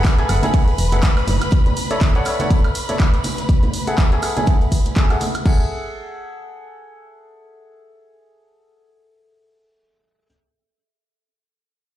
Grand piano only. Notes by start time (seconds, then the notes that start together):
Already playing: G#4 A4 E5 F#5
0.19 G#4 A4 E5 G#5
0.29 G#4 A4 E5 F#5
0.43 G#4 A4 E5 G#5
0.54 G#4 A4 E5 F#5
0.92 G#4 A4 E5 F#5
1.91 A4 C#5 D5 E5
2.15 A4 C#5 D5 F#5
2.26 A4 C#5 D5 E5
2.40 A4 C#5 D5 F#5
2.51 A4 C#5 D5
2.89 A4 C#5 D5 E5
3.87 G#4 A4 E5 F#5
4.12 G#4 A4 E5 G#5
4.23 G#4 A4 E5 F#5
4.37 G#4 A4 E5 G#5
4.47 E5 F#5
4.96 G#4 A4 E5 G#5
5.10 G#4 A4 E5 F#5
5.46 G#4 A4 E5 F#5